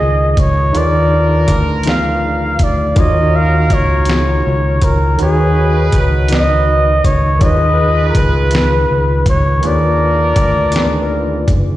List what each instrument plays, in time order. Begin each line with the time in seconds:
Already playing: tine electric piano D#3 D#4 F4 G#4 A#4 B4, horn section D#4 F4 G#4, flugelhorn D#5
0.02 fingered electric bass C#2
0.31 flugelhorn D#5
0.37 fingered electric bass C#2, flugelhorn C#5, kick, closed hi-hat
0.72 fingered electric bass D#2, tine electric piano D#3 D#4 F4 G#4 B4, horn section D4 F4 A#4, closed hi-hat
0.77 tine electric piano D5, flugelhorn D5
1.48 fingered electric bass D2, kick, closed hi-hat
1.83 tine electric piano F3 D#4 F4 G#4, closed hi-hat
1.87 tine electric piano B4 D5, flugelhorn F5, snare
2.59 fingered electric bass D2, kick, closed hi-hat
2.63 flugelhorn D5
2.95 fingered electric bass D#2, tine electric piano D#3 D#4 F4 F#4, horn section A#3 F#4 A#4, kick, closed hi-hat
2.99 tine electric piano C#5, flugelhorn D#5
3.35 flugelhorn F5
3.70 fingered electric bass C#2, flugelhorn C#5, kick, closed hi-hat
4.05 tine electric piano D#3 D#4 F4, closed hi-hat
4.09 tine electric piano F#4 G#4, snare
4.47 fingered electric bass C#2
4.82 fingered electric bass C#2, flugelhorn A#4, kick, closed hi-hat
5.17 fingered electric bass D#2, tine electric piano D#3 D#4 F#4 A#4, horn section D#4 F#4 B4, closed hi-hat
5.21 flugelhorn G#4, tine electric piano B4 C#5
5.92 fingered electric bass C#2, kick, closed hi-hat
6.28 tine electric piano D#3 D#4 F#4 A#4 B4, flugelhorn D#5, closed hi-hat
6.33 tine electric piano D#5, snare
7.04 fingered electric bass C#2, flugelhorn C#5, kick, closed hi-hat
7.39 fingered electric bass D#2, tine electric piano D#3 D#4 F4 G#4, horn section F4 G#4 B4, flugelhorn D#5, kick, closed hi-hat
7.44 tine electric piano B4
8.09 flugelhorn A#4
8.15 fingered electric bass C#2, kick, closed hi-hat
8.19 flugelhorn B4
8.50 tine electric piano D#3 D#4 F4 G#4, closed hi-hat
8.55 tine electric piano B4, snare
8.91 fingered electric bass C#2
9.26 fingered electric bass C#2, flugelhorn C#5, kick, closed hi-hat
9.61 fingered electric bass D#2, tine electric piano D#3 A#3 D4 F4 G#4, horn section D4 F4 A#4, closed hi-hat
9.65 tine electric piano B4, flugelhorn D5
10.36 fingered electric bass D2, kick, closed hi-hat
10.72 tine electric piano A#3 D4 D#4 F4 G#4, closed hi-hat
10.76 tine electric piano B4, snare
11.48 fingered electric bass F#1, kick, closed hi-hat